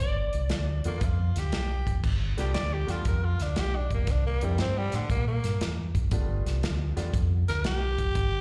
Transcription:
0.00 G1 D5
0.33 C2, closed hi-hat
0.50 D2, snare, closed hi-hat
0.84 E2 A3 A#3 B3 D4 F4, closed hi-hat
1.01 F2 F4, kick, closed hi-hat
1.36 D2 G4, snare, closed hi-hat
1.52 B1, snare, closed hi-hat
1.87 F1, kick, closed hi-hat
2.04 G1, kick, crash
2.37 C2 G3 A3 B3 D4 F4 G4, snare, closed hi-hat
2.54 D2 D5, snare, closed hi-hat
2.73 G4
2.87 E2 G3 A3 B3 D4 F4, snare, closed hi-hat
3.05 F2 A#4, kick, closed hi-hat
3.25 F4
3.40 D2 D4, snare, closed hi-hat
3.56 B1, snare, closed hi-hat
3.60 G4
3.76 D4
3.91 F1 A#3, kick, closed hi-hat
4.07 C2 D4, kick, snare, closed hi-hat
4.26 A#3
4.41 F2 G3 A#3 C4 D4 E4, closed hi-hat
4.58 G2 C4, snare, closed hi-hat
4.78 G3
4.92 A2 D3, snare, closed hi-hat
5.10 A#2 A#3, kick, closed hi-hat
5.27 A#3
5.44 G2, snare, closed hi-hat
5.61 E2, snare, closed hi-hat
5.94 F#1, kick, closed hi-hat
6.11 G1 G3 A3 B3 D4 F4, kick, closed hi-hat
6.46 C2, snare, closed hi-hat
6.63 D2, snare, closed hi-hat
6.97 E2 G3 A3 B3 D4 F4, snare, closed hi-hat
7.14 F2, kick, closed hi-hat
7.48 D2 A#4, snare, closed hi-hat
7.64 B1 G4, snare, closed hi-hat
7.99 F1, kick, closed hi-hat
8.15 G1, kick, closed hi-hat

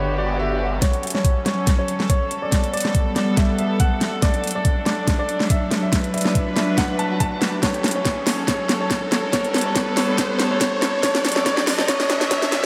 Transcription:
Already playing: G1 D3 B3 G4 C#5, swell
0.18 D5
0.39 E5
0.82 F#3 C#4 A4 C#5, kick, snare, closed hi-hat, riser
0.93 closed hi-hat
1.03 closed hi-hat
1.07 closed hi-hat
1.10 closed hi-hat
1.15 C#5, snare
1.25 kick, closed hi-hat
1.46 C#5, snare, closed hi-hat
1.67 kick, snare, closed hi-hat
1.79 C#5
1.88 closed hi-hat
2.00 snare
2.10 C#5, kick, closed hi-hat
2.31 closed hi-hat
2.42 D5
2.52 G3 B3, kick, snare, closed hi-hat
2.64 closed hi-hat
2.73 D5, closed hi-hat
2.77 closed hi-hat
2.80 closed hi-hat
2.85 snare
2.95 kick, closed hi-hat
3.16 D5, snare, closed hi-hat
3.37 E5, kick, snare, closed hi-hat
3.58 E5, closed hi-hat
3.80 F#5, kick, closed hi-hat
4.01 snare, closed hi-hat
4.22 F#3 D4 D5, kick, snare, closed hi-hat
4.34 closed hi-hat
4.44 closed hi-hat
4.47 closed hi-hat
4.51 closed hi-hat
4.55 D5
4.65 kick, closed hi-hat
4.86 D5, snare, closed hi-hat
5.07 kick, snare, closed hi-hat
5.19 D5
5.29 closed hi-hat
5.40 snare
5.50 E5, kick, closed hi-hat
5.71 snare, closed hi-hat
5.83 E5
5.93 D4 B4, kick, snare, closed hi-hat
6.04 closed hi-hat
6.14 E5, closed hi-hat
6.18 closed hi-hat
6.21 closed hi-hat
6.25 snare
6.35 kick, closed hi-hat
6.56 E5, snare, closed hi-hat
6.78 F#5, kick, snare, closed hi-hat
6.99 A5, closed hi-hat
7.20 A5, kick, closed hi-hat
7.42 snare, closed hi-hat
7.63 C#4 A4 C#5, kick, snare, closed hi-hat
7.74 closed hi-hat
7.84 snare, closed hi-hat
7.88 closed hi-hat
7.91 closed hi-hat
7.95 C#5
8.05 kick, snare, closed hi-hat
8.27 C#5, snare, open hi-hat
8.48 C#5, kick, snare, closed hi-hat
8.69 snare, closed hi-hat
8.80 C#5
8.90 kick, snare, closed hi-hat
9.12 C#5, snare, closed hi-hat
9.33 G3 B3 C#5, kick, snare, closed hi-hat
9.44 closed hi-hat
9.54 snare, closed hi-hat
9.58 closed hi-hat
9.61 closed hi-hat
9.65 C#5
9.76 kick, snare, closed hi-hat
9.97 C#5, snare, open hi-hat
10.18 C#5, kick, snare, closed hi-hat
10.39 snare, closed hi-hat
10.51 C#5
10.61 kick, snare, closed hi-hat
10.82 C#5, snare, closed hi-hat
11.03 F#3 D4 C#5, kick, snare, closed hi-hat
11.15 snare, closed hi-hat
11.25 snare, closed hi-hat
11.29 closed hi-hat
11.32 closed hi-hat
11.36 C#5, snare
11.46 C#5, kick, snare, closed hi-hat
11.57 snare
11.67 snare, open hi-hat
11.79 C#5, snare
11.88 C#5, kick, snare, closed hi-hat
12.00 snare
12.10 snare, closed hi-hat
12.21 C#5, snare
12.31 C#5, kick, snare, closed hi-hat
12.42 snare
12.52 snare, closed hi-hat

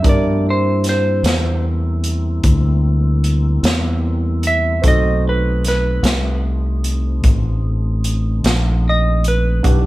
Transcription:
0.02 G2 F3 G3 B3 C4 D4 E4 G4 A#4, kick, closed hi-hat
0.09 D5
0.44 G3 A#3 C4 E4
0.50 C5
0.84 snare, closed hi-hat
0.89 C5
1.23 E2, snare, closed hi-hat
2.04 closed hi-hat
2.44 D2, kick, closed hi-hat
3.24 closed hi-hat
3.63 E2, snare, closed hi-hat
4.43 closed hi-hat
4.47 E5
4.82 B1 A3 C4 D#4 F#4 A4, kick, closed hi-hat
4.88 D#5
5.29 B4
5.64 B4, snare, closed hi-hat
6.03 C2, snare, closed hi-hat
6.84 closed hi-hat
7.24 A1, kick, closed hi-hat
8.04 closed hi-hat
8.44 A#1, snare, closed hi-hat
8.89 D#5
9.24 B4, closed hi-hat
9.63 B1 G3 B3 D4 E4 G4 B4 F#5, kick, closed hi-hat

